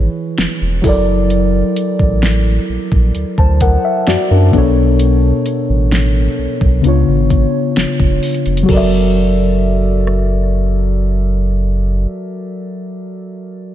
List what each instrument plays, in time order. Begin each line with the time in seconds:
Already playing: synth keys E3 E4 G#4 B4 C#5
0.38 sub bass E1, snare, closed hi-hat
0.61 sub bass E1
0.82 sub bass F#1, synth keys F#3 E4 A4, kick, open hi-hat
0.87 synth keys A#4 D5
1.30 closed hi-hat
1.76 closed hi-hat
1.99 sub bass A1, kick
2.23 snare, closed hi-hat
2.69 sub bass A#1
2.92 sub bass A#1, kick
3.15 sub bass D2, closed hi-hat
3.38 sub bass D2, synth keys C5 A5, kick
3.61 synth keys A#4 F#5, kick, closed hi-hat
3.85 synth keys E5
4.07 sub bass F#2, synth keys F#4 D5, snare, closed hi-hat
4.30 sub bass F#2, synth keys D4 A#4
4.51 sub bass B1, synth keys B2 B3 D4, kick, closed hi-hat
4.56 synth keys A4 C#5
4.99 closed hi-hat
5.46 closed hi-hat
5.69 sub bass A1
5.92 snare, closed hi-hat
6.38 sub bass B1
6.61 sub bass B1, kick
6.82 sub bass C#2, synth keys C#3 B3 D4, closed hi-hat
6.87 synth keys F4 C#5
7.08 sub bass G#1
7.30 kick, closed hi-hat
7.76 sub bass F1, snare, closed hi-hat
8.00 sub bass F1, kick
8.23 closed hi-hat, open hi-hat
8.34 closed hi-hat
8.46 sub bass F1, closed hi-hat
8.57 closed hi-hat
8.63 synth keys F#3 F#4
8.68 sub bass F#1, synth keys A4 A#4, kick, crash
8.74 synth keys D5 E5
10.07 cross-stick